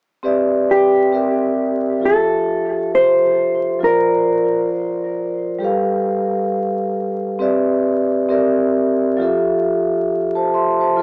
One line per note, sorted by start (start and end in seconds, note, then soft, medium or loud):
0.23 1.11 C4 medium
0.23 1.11 G4 medium
0.23 1.13 B4 medium
0.23 1.13 D5 medium
0.23 1.14 E5 medium
0.71 2.05 G4 medium
1.12 2.02 C4 medium
1.12 2.02 G4 medium
1.12 2.03 A#4 medium
1.12 2.03 D5 medium
1.12 2.04 E5 medium
2.00 3.77 F3 soft
2.00 3.78 F4 medium
2.00 3.79 G4 soft
2.05 3.79 A4 soft
2.05 2.95 A4 medium
2.05 3.80 E5 medium
2.95 3.84 C5 loud
3.79 5.56 F3 medium
3.79 5.57 F4 medium
3.79 5.58 A#4 soft
3.84 4.69 A#4 medium
3.84 5.59 C5 soft
3.84 5.59 D5 medium
5.59 7.35 G3 medium
5.59 7.36 G4 medium
5.59 7.37 A4 medium
5.63 7.38 B4 medium
5.63 7.38 F5 medium
7.39 8.27 C4 medium
7.39 8.28 G4 medium
7.39 8.30 B4 medium
7.39 8.30 D5 medium
7.39 8.31 E5 medium
8.29 9.19 C4 medium
8.29 9.19 G4 medium
8.29 9.20 A#4 medium
8.29 9.20 D5 medium
8.29 9.20 E5 medium
9.17 10.94 F3 medium
9.17 10.94 F4 medium
9.17 10.95 G4 medium
9.22 10.96 A4 medium
9.22 10.09 E5 medium
10.35 10.53 C5 soft
10.35 10.53 A5 medium
10.54 10.79 E5 medium
10.54 10.79 C6 medium
10.80 11.00 C5 medium
10.80 11.02 A5 medium
10.96 11.02 F3 medium
10.96 11.02 F4 medium
10.96 11.02 A4 medium